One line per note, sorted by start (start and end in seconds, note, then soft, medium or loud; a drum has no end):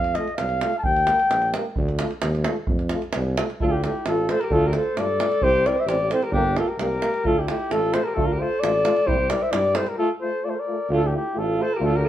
0.00 0.19 F2 loud
0.00 0.16 F5 loud
0.04 davul high soft
0.15 0.27 A3 medium
0.15 0.27 F4 medium
0.15 0.37 D#5 medium
0.15 davul high soft
0.28 davul high soft
0.37 0.65 C2 medium
0.37 0.75 F5 loud
0.37 davul high medium
0.49 davul high soft
0.61 0.72 A3 medium
0.61 0.72 F4 medium
0.61 davul high medium
0.79 0.85 A5 medium
0.84 1.10 D#2 loud
0.84 1.54 G5 loud
0.84 davul low medium
0.96 davul high soft
1.07 1.19 A#3 medium
1.07 1.17 G4 medium
1.07 davul high medium
1.20 davul high soft
1.30 1.56 A#1 medium
1.30 davul high medium
1.42 davul high soft
1.54 1.65 A#3 medium
1.54 1.64 G4 medium
1.54 davul high medium
1.76 2.03 D2 loud
1.76 davul low medium
1.89 davul high soft
1.99 2.11 A3 medium
1.99 2.08 F4 medium
1.99 davul high medium
2.11 davul high soft
2.22 2.48 D#2 loud
2.22 davul high medium
2.35 davul high soft
2.44 2.56 A3 medium
2.44 2.55 F4 medium
2.44 davul high medium
2.67 2.94 F2 loud
2.67 davul low loud
2.79 davul high soft
2.89 3.02 A3 medium
2.89 3.01 F4 medium
2.89 davul high medium
3.02 davul high soft
3.13 3.40 C2 loud
3.13 davul high medium
3.38 3.48 A3 medium
3.38 3.47 F4 medium
3.38 davul high medium
3.50 davul high soft
3.60 3.87 D2 loud
3.60 3.71 A3 medium
3.60 3.63 E4 medium
3.60 3.71 F4 medium
3.60 3.67 F4 medium
3.60 3.66 A4 loud
3.60 davul low medium
3.66 3.76 F4 medium
3.66 3.73 A4 loud
3.72 3.83 E4 medium
3.72 3.83 G4 medium
3.84 3.94 A3 medium
3.84 4.05 E4 medium
3.84 3.94 F4 medium
3.84 4.06 G4 medium
3.84 davul high medium
4.06 4.31 A1 medium
4.06 4.15 A3 medium
4.06 4.32 F4 medium
4.06 4.17 F4 medium
4.06 4.32 A4 loud
4.06 davul high medium
4.28 4.37 A3 medium
4.28 4.38 F4 medium
4.28 4.45 A4 medium
4.28 4.42 C5 loud
4.28 davul high medium
4.40 4.55 G4 medium
4.40 4.54 A#4 medium
4.40 davul high soft
4.50 4.76 D2 loud
4.50 4.60 A3 medium
4.50 4.61 F4 medium
4.50 4.69 F4 medium
4.50 4.68 A4 loud
4.50 davul low medium
4.66 4.76 G4 medium
4.66 4.76 A#4 medium
4.73 4.83 A3 medium
4.73 4.83 F4 medium
4.73 4.99 A4 medium
4.73 5.00 C5 medium
4.73 davul high medium
4.96 5.22 G2 medium
4.96 5.05 A3 medium
4.96 5.06 F4 medium
4.96 5.44 A4 medium
4.96 5.44 D5 loud
4.96 davul high medium
5.18 5.28 A3 medium
5.18 5.29 F4 medium
5.18 davul high medium
5.32 davul high soft
5.42 5.67 C2 loud
5.42 5.52 C4 medium
5.42 5.52 E4 medium
5.42 5.67 G4 loud
5.42 5.68 C5 loud
5.42 davul low medium
5.66 5.76 C4 medium
5.66 5.76 E4 medium
5.66 5.77 A#4 medium
5.66 5.81 D5 loud
5.66 davul high medium
5.76 5.87 C5 medium
5.80 5.90 E5 medium
5.86 6.12 A1 loud
5.86 5.97 C4 medium
5.86 5.97 E4 medium
5.86 6.10 G4 medium
5.86 6.12 D5 loud
5.86 davul high medium
6.11 6.21 C4 medium
6.11 6.21 E4 medium
6.11 6.24 A4 medium
6.11 6.25 C5 medium
6.11 davul high medium
6.23 6.32 G4 medium
6.23 6.34 A#4 medium
6.23 davul high soft
6.31 6.57 G1 loud
6.31 6.43 A#3 medium
6.31 6.58 D4 medium
6.31 6.59 G4 loud
6.31 6.44 G4 medium
6.31 davul low medium
6.57 6.66 A#3 medium
6.57 6.70 F4 medium
6.57 6.67 G4 medium
6.57 6.70 A4 medium
6.57 davul high medium
6.68 6.78 G4 medium
6.68 6.80 A#4 medium
6.78 7.03 C2 medium
6.78 6.89 A#3 medium
6.78 7.26 G4 medium
6.78 6.89 G4 medium
6.78 7.29 A#4 loud
6.78 davul high medium
7.02 7.11 A#3 medium
7.02 7.11 G4 medium
7.02 davul high medium
7.14 davul high soft
7.24 7.49 D2 loud
7.24 7.34 A3 medium
7.24 7.40 F4 medium
7.24 7.34 F4 medium
7.24 7.40 A4 loud
7.24 davul low medium
7.38 7.49 E4 medium
7.38 7.49 G4 medium
7.46 7.57 A3 medium
7.46 7.56 F4 medium
7.46 7.74 G4 medium
7.46 davul high medium
7.50 7.75 E4 medium
7.70 7.96 A1 medium
7.70 7.80 A3 medium
7.70 7.79 F4 medium
7.70 7.98 F4 medium
7.70 7.95 A4 loud
7.70 davul high medium
7.92 8.02 A3 medium
7.92 8.02 F4 medium
7.92 8.05 C5 loud
7.92 davul high medium
7.97 8.09 A4 medium
8.04 8.21 G4 medium
8.04 8.16 A#4 medium
8.14 8.42 D2 loud
8.14 8.25 A3 medium
8.14 8.26 F4 medium
8.14 8.27 A4 loud
8.14 davul low medium
8.19 8.34 F4 medium
8.26 8.41 A#4 medium
8.33 8.43 G4 medium
8.39 8.48 A3 medium
8.39 8.48 F4 medium
8.39 8.62 A4 medium
8.39 8.61 C5 medium
8.60 8.88 A1 loud
8.60 8.72 A3 medium
8.60 8.72 F4 medium
8.60 9.08 A4 medium
8.60 9.09 D5 loud
8.60 davul high medium
8.84 8.93 A3 medium
8.84 8.95 F4 medium
8.84 davul high medium
8.97 davul high soft
9.06 9.32 C2 loud
9.06 9.17 G3 medium
9.06 9.16 E4 medium
9.06 9.32 G4 medium
9.06 9.31 C5 loud
9.06 davul low loud
9.29 9.41 G3 medium
9.29 9.39 E4 medium
9.29 9.43 A#4 medium
9.29 9.44 D5 medium
9.29 davul high medium
9.42 9.53 C5 medium
9.42 9.53 E5 medium
9.51 9.78 G2 loud
9.51 9.63 G3 medium
9.51 9.60 E4 medium
9.51 9.76 G4 medium
9.51 9.78 D5 loud
9.51 davul high medium
9.74 9.87 G3 medium
9.74 9.84 E4 medium
9.74 9.89 A4 medium
9.74 9.90 C5 medium
9.74 davul high medium
9.87 9.97 G4 medium
9.87 9.97 A#4 medium
9.87 davul high soft
9.97 10.08 A3 medium
9.97 10.06 F4 medium
9.97 10.09 F4 medium
9.97 10.09 A4 loud
10.21 10.31 A3 medium
10.21 10.30 F4 medium
10.21 10.43 A4 medium
10.21 10.46 C5 medium
10.43 10.54 A3 medium
10.43 10.53 F4 medium
10.43 10.50 A4 medium
10.43 10.51 D5 medium
10.50 10.56 A4 medium
10.50 10.61 C5 medium
10.55 10.88 A#4 medium
10.59 10.90 D5 medium
10.67 10.78 A3 medium
10.67 10.76 F4 medium
10.89 11.14 D2 loud
10.89 11.00 A3 medium
10.89 10.99 F4 medium
10.89 11.05 F4 medium
10.96 11.08 A4 loud
11.04 11.13 E4 medium
11.04 11.15 G4 medium
11.12 11.22 A3 medium
11.12 11.40 E4 medium
11.12 11.21 F4 medium
11.16 11.40 G4 medium
11.33 11.61 A1 loud
11.33 11.44 A3 medium
11.33 11.43 F4 medium
11.38 11.64 F4 medium
11.38 11.63 A4 medium
11.57 11.67 A3 medium
11.57 11.66 F4 medium
11.62 11.77 A4 medium
11.62 11.75 C5 medium
11.74 11.87 G4 medium
11.74 11.86 A#4 medium
11.79 12.05 D2 loud
11.79 11.90 A3 medium
11.79 11.88 F4 medium
11.85 11.98 F4 medium
11.85 11.97 A4 loud
11.96 12.06 G4 medium
11.96 12.09 A#4 medium
12.03 12.09 A3 medium
12.03 12.09 F4 medium
12.03 12.09 A4 medium